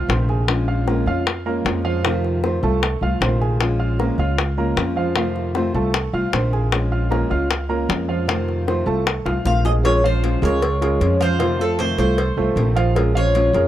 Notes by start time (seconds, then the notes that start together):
0.08 A#1 C3 D#3 A3 C4 F4 C5 C6, high bongo, low bongo
0.29 G#4 G#5, high bongo
0.48 F3 G#3 C#4 F4, high bongo
0.68 F4 F5 F6
0.87 F3 G#3 A#3 C#4 F4 A#4 A#5, high bongo
1.06 F2 G#3 C#4 F4 F5 F6
1.27 muted nylon-string guitar stroke, high bongo
1.46 G#3 A#3 C#4 F4 A#4 A#5
1.65 F2 F3 G#3 C#4 F4, high bongo, low bongo
1.84 F3 F4 F5
2.04 C3 D#3 F3 A3 C4 F4 F5, high bongo
2.25 high bongo
2.43 C3 D#3 A3 C4 F4 C5 C6, high bongo
2.63 C2 A3 C4 F4 A4 A5, high bongo
2.83 muted nylon-string guitar stroke, high bongo
3.01 C2 A3 C4 F4 F5 F6
3.21 A#1 C3 D#3 A3 C4 F4 C5 C6, high bongo, low bongo
3.41 G#4 G#5, high bongo
3.60 F3 G#3 C#4 F4, high bongo
3.79 F4 F5 F6
3.99 F3 G#3 A#3 C#4 F4 A#4 A#5, high bongo
4.18 C#2 G#3 C#4 F4 F5 F6
4.38 muted nylon-string guitar stroke, high bongo
4.57 G#3 A#3 C#4 F4 A#4 A#5
4.76 F2 F3 G#3 C#4 F4, high bongo, low bongo
4.96 F3 F4 F5
5.15 C3 D#3 F3 A3 C4 F4 F5, high bongo
5.36 high bongo
5.55 C3 D#3 A3 C4 F4 C5 C6, high bongo
5.74 C2 A3 C4 F4 A4 A5, high bongo
5.94 muted nylon-string guitar stroke, high bongo
6.13 C2 A3 C4 F4 F5 F6
6.32 A#1 C3 D#3 A3 C4 F4 C5 C6, high bongo, low bongo
6.53 G#4 G#5, high bongo
6.71 F3 G#3 C#4 F4, high bongo
6.92 F4 F5 F6
7.10 F3 G#3 A#3 C#4 F4 A#4 A#5, high bongo
7.29 C#2 G#3 C#4 F4 F5 F6
7.51 muted nylon-string guitar stroke, high bongo
7.69 G#3 A#3 C#4 F4 A#4 A#5
7.89 F2 F3 G#3 C#4 F4, high bongo, low bongo
8.08 F3 F4 F5
8.27 C3 D#3 F3 A3 C4 F4 F5, high bongo
8.48 high bongo
8.67 C3 D#3 A3 C4 F4 C5 C6, high bongo
8.86 C2 A3 C4 F4 A4 A5, high bongo
9.06 muted nylon-string guitar stroke, high bongo
9.25 C2 A3 C4 F4 F5 F6, high bongo
9.44 A#1 C3 D#3 A3 C4 F4 C5 F5 C6, low bongo
9.65 G#3 G#4 D#5 G#5, low bongo
9.83 F3 G#3 C#4 F4 G#4 A#4 C#5, cowbell
10.03 F3 G#3 C#4 F4 C5 F5
10.22 F3 G#3 C#4 F4, cowbell
10.42 C#2 G#3 C#4 F4 G#4 A#4 C#5, cowbell
10.62 muted nylon-string guitar stroke, cowbell
10.81 G#3 C#4 F4 G#4 A#4, cowbell
11.01 F2 F3 G#3 C#4 F4, cowbell
11.20 F3 F4 C5 F5, cowbell
11.39 C3 D#3 F3 A3 C4 F4 F5, cowbell
11.59 A3 C4 F4 A4
11.78 C3 D#3 A3 C4 F4 A4 C5, cowbell
11.98 C2 A3 C4 F4 A4 C5, cowbell
12.18 muted nylon-string guitar stroke, cowbell
12.37 C2 A3 C4 F4 A4 C5
12.56 A#1 C3 D#3 A3 C4 F4, cowbell
12.76 F3 F4 F5, cowbell
12.95 F3 G#3 C#4 F4 G#4 A#4, cowbell
13.14 F3 G#3 C#4 F4 C#5 F5
13.35 F3 G#3 C#4 F4, cowbell
13.53 F2 G#3 C#4 F4 G#4 A#4, cowbell